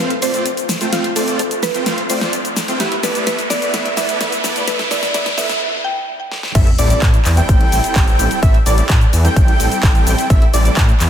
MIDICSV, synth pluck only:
0, 0, Header, 1, 2, 480
1, 0, Start_track
1, 0, Key_signature, 0, "minor"
1, 0, Tempo, 468750
1, 948, Time_signature, 4, 2, 24, 8
1, 11363, End_track
2, 0, Start_track
2, 0, Title_t, "Synth pluck"
2, 0, Program_c, 0, 84
2, 0, Note_on_c, 0, 71, 110
2, 229, Note_on_c, 0, 72, 105
2, 242, Note_off_c, 0, 71, 0
2, 675, Note_off_c, 0, 72, 0
2, 948, Note_on_c, 0, 65, 90
2, 1188, Note_on_c, 0, 69, 88
2, 1196, Note_off_c, 0, 65, 0
2, 1418, Note_off_c, 0, 69, 0
2, 1430, Note_on_c, 0, 69, 92
2, 1670, Note_on_c, 0, 71, 108
2, 1676, Note_off_c, 0, 69, 0
2, 2148, Note_on_c, 0, 72, 110
2, 2164, Note_off_c, 0, 71, 0
2, 2594, Note_off_c, 0, 72, 0
2, 2870, Note_on_c, 0, 67, 89
2, 3108, Note_on_c, 0, 71, 91
2, 3116, Note_off_c, 0, 67, 0
2, 3334, Note_off_c, 0, 71, 0
2, 3346, Note_on_c, 0, 71, 95
2, 3586, Note_on_c, 0, 74, 112
2, 3594, Note_off_c, 0, 71, 0
2, 4033, Note_off_c, 0, 74, 0
2, 4066, Note_on_c, 0, 76, 104
2, 4514, Note_off_c, 0, 76, 0
2, 4789, Note_on_c, 0, 71, 89
2, 5012, Note_off_c, 0, 71, 0
2, 5027, Note_on_c, 0, 74, 88
2, 5254, Note_off_c, 0, 74, 0
2, 5267, Note_on_c, 0, 74, 97
2, 5504, Note_on_c, 0, 76, 108
2, 5515, Note_off_c, 0, 74, 0
2, 5985, Note_on_c, 0, 79, 107
2, 6001, Note_off_c, 0, 76, 0
2, 6433, Note_off_c, 0, 79, 0
2, 11363, End_track
0, 0, End_of_file